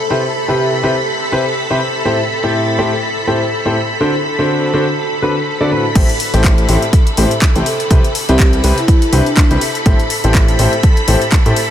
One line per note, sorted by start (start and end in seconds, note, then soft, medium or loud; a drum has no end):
0.00 5.94 A4 medium
0.00 5.94 B5 medium
0.10 0.21 C3 medium
0.10 0.21 C4 medium
0.10 0.21 E4 medium
0.10 0.21 G4 medium
0.10 0.21 B4 medium
0.10 0.21 C5 medium
0.48 0.81 C3 medium
0.48 0.81 C4 medium
0.48 0.81 E4 medium
0.48 0.81 G4 medium
0.48 0.58 G4 medium
0.48 0.81 B4 medium
0.48 0.81 C5 medium
0.83 0.94 C3 medium
0.83 0.95 C4 medium
0.83 0.95 E4 medium
0.83 0.94 G4 medium
0.83 0.95 B4 medium
0.83 0.95 C5 medium
1.32 1.43 C3 medium
1.32 1.43 C4 medium
1.32 1.43 E4 medium
1.32 1.43 G4 medium
1.32 1.43 B4 medium
1.32 1.43 C5 medium
1.70 1.79 C3 medium
1.70 1.79 C4 medium
1.70 1.79 E4 medium
1.70 1.79 G4 medium
1.70 1.79 B4 medium
1.70 1.79 C5 medium
2.05 2.16 A2 medium
2.05 2.16 C4 medium
2.05 2.16 E4 medium
2.05 2.16 G4 medium
2.05 2.16 A4 medium
2.05 2.16 C5 medium
2.43 2.76 A2 medium
2.43 2.76 C4 medium
2.43 2.76 E4 medium
2.43 2.76 G4 medium
2.43 2.76 A4 medium
2.43 2.76 C5 medium
2.78 2.90 A2 medium
2.78 2.90 C4 medium
2.78 2.90 E4 medium
2.78 2.90 G4 medium
2.78 2.90 A4 medium
2.78 2.90 C5 medium
3.27 3.38 A2 medium
3.27 3.38 C4 medium
3.27 3.38 E4 medium
3.27 3.38 G4 medium
3.27 3.38 A4 medium
3.27 3.38 C5 medium
3.65 3.74 A2 medium
3.65 3.74 C4 medium
3.65 3.74 E4 medium
3.65 3.74 G4 medium
3.65 3.74 A4 medium
3.65 3.74 C5 medium
4.00 4.12 D3 medium
4.00 4.12 C4 medium
4.00 4.12 D4 medium
4.00 4.12 F#4 medium
4.00 4.12 A4 medium
4.00 4.12 C5 medium
4.39 4.71 D3 medium
4.39 4.71 C4 medium
4.39 4.71 D4 medium
4.39 4.71 F#4 medium
4.39 4.71 A4 medium
4.39 4.71 C5 medium
4.74 4.85 D3 medium
4.74 4.85 C4 medium
4.74 4.85 D4 medium
4.74 4.85 F#4 medium
4.74 4.85 A4 medium
4.74 4.85 C5 loud
5.22 5.34 D3 medium
5.22 5.34 C4 medium
5.22 5.34 D4 medium
5.22 5.34 F#4 medium
5.22 5.34 A4 medium
5.22 5.34 B4 medium
5.61 5.69 D3 medium
5.61 5.69 C4 medium
5.61 5.69 D4 medium
5.61 5.69 F#4 medium
5.61 5.69 A4 medium
5.61 5.69 D5 loud
5.71 5.82 A2 medium
5.71 5.82 C4 medium
5.71 5.82 D4 medium
5.71 5.82 F#4 medium
5.71 5.82 A4 medium
5.71 5.82 B4 medium
5.95 6.04 A1 loud
5.95 6.07 A2 medium
5.95 6.07 C4 medium
5.95 6.07 E4 medium
5.95 6.07 G4 medium
5.95 6.07 A4 medium
5.95 11.70 A4 medium
5.95 6.07 C5 medium
5.95 11.70 B5 medium
5.95 kick loud
5.95 closed hi-hat medium
5.95 crash loud
6.09 closed hi-hat soft
6.20 open hi-hat loud
6.34 6.67 A1 loud
6.34 6.66 A2 medium
6.34 6.66 C4 medium
6.34 6.66 E4 medium
6.34 6.66 G4 medium
6.34 6.66 A4 medium
6.34 6.66 C5 medium
6.34 closed hi-hat soft
6.44 kick loud
6.44 clap loud
6.44 closed hi-hat medium
6.58 closed hi-hat soft
6.69 6.77 A1 loud
6.69 6.80 A2 medium
6.69 6.80 C4 medium
6.69 6.80 E4 medium
6.69 6.80 G4 medium
6.69 6.80 A4 medium
6.69 6.80 C5 loud
6.69 open hi-hat medium
6.82 closed hi-hat soft
6.93 kick loud
6.93 closed hi-hat medium
7.07 closed hi-hat soft
7.17 7.26 A1 loud
7.17 7.29 A2 medium
7.17 7.29 C4 medium
7.17 7.29 E4 medium
7.17 7.29 G4 medium
7.17 7.29 A4 medium
7.17 7.29 C5 medium
7.17 open hi-hat loud
7.31 closed hi-hat soft
7.42 kick loud
7.42 clap loud
7.42 closed hi-hat medium
7.56 7.62 A1 loud
7.56 7.64 C3 medium
7.56 7.64 C4 medium
7.56 7.64 E4 medium
7.56 7.64 G4 medium
7.56 7.64 A4 medium
7.56 7.64 C5 medium
7.56 closed hi-hat soft
7.66 7.75 A4 medium
7.66 open hi-hat medium
7.80 7.87 A4 medium
7.80 closed hi-hat soft
7.91 7.99 C2 loud
7.91 8.02 C3 medium
7.91 8.02 C4 medium
7.91 8.02 E4 medium
7.91 8.02 G4 medium
7.91 8.02 B4 medium
7.91 8.02 C5 loud
7.91 kick loud
7.91 closed hi-hat medium
8.04 closed hi-hat soft
8.15 open hi-hat loud
8.29 8.62 C2 loud
8.29 8.61 C3 medium
8.29 8.61 C4 medium
8.29 8.61 E4 medium
8.29 8.38 G4 medium
8.29 8.61 G4 medium
8.29 8.61 B4 medium
8.29 8.61 C5 medium
8.29 closed hi-hat soft
8.39 kick loud
8.39 clap loud
8.39 closed hi-hat medium
8.53 closed hi-hat soft
8.64 8.72 C2 loud
8.64 8.75 C3 medium
8.64 8.75 C4 medium
8.64 8.75 E4 medium
8.64 8.75 G4 medium
8.64 8.75 B4 medium
8.64 8.75 C5 loud
8.64 open hi-hat medium
8.78 9.11 E4 medium
8.78 closed hi-hat soft
8.88 kick loud
8.88 closed hi-hat medium
9.02 closed hi-hat soft
9.13 9.21 C2 loud
9.13 9.24 C3 medium
9.13 9.24 C4 medium
9.13 9.51 D4 medium
9.13 9.24 E4 medium
9.13 9.24 G4 medium
9.13 9.24 B4 medium
9.13 9.24 C5 medium
9.13 open hi-hat loud
9.26 closed hi-hat soft
9.37 kick loud
9.37 clap loud
9.37 closed hi-hat medium
9.51 9.57 C2 loud
9.51 9.59 C3 medium
9.51 9.59 C4 medium
9.51 9.59 E4 medium
9.51 9.59 G4 medium
9.51 9.59 B4 medium
9.51 9.59 C5 medium
9.51 closed hi-hat soft
9.61 open hi-hat medium
9.75 closed hi-hat soft
9.86 9.94 A1 loud
9.86 9.97 A2 medium
9.86 9.97 C4 medium
9.86 9.97 E4 medium
9.86 9.97 G4 medium
9.86 9.97 A4 medium
9.86 9.97 C5 loud
9.86 kick loud
9.86 closed hi-hat medium
10.00 closed hi-hat soft
10.10 open hi-hat loud
10.24 10.57 A1 loud
10.24 10.56 A2 medium
10.24 10.56 C4 medium
10.24 10.56 E4 medium
10.24 10.56 G4 medium
10.24 10.56 A4 medium
10.24 10.56 C5 medium
10.24 closed hi-hat soft
10.35 kick loud
10.35 clap loud
10.35 closed hi-hat medium
10.48 closed hi-hat soft
10.59 10.67 A1 loud
10.59 10.70 A2 medium
10.59 10.70 C4 medium
10.59 10.70 E4 medium
10.59 10.70 G4 medium
10.59 10.70 A4 medium
10.59 10.70 C5 loud
10.59 open hi-hat loud
10.73 closed hi-hat soft
10.83 kick loud
10.83 closed hi-hat medium
10.97 closed hi-hat soft
11.08 11.16 A1 loud
11.08 11.19 A2 medium
11.08 11.19 C4 medium
11.08 11.19 E4 medium
11.08 11.19 G4 medium
11.08 11.19 A4 medium
11.08 11.19 C5 medium
11.08 open hi-hat loud
11.22 closed hi-hat soft
11.32 kick loud
11.32 clap loud
11.32 closed hi-hat medium
11.46 11.52 A2 loud
11.46 11.55 A2 medium
11.46 11.55 C4 medium
11.46 11.55 E4 medium
11.46 11.55 G4 medium
11.46 11.55 A4 medium
11.46 11.55 C5 medium
11.46 closed hi-hat soft
11.56 open hi-hat loud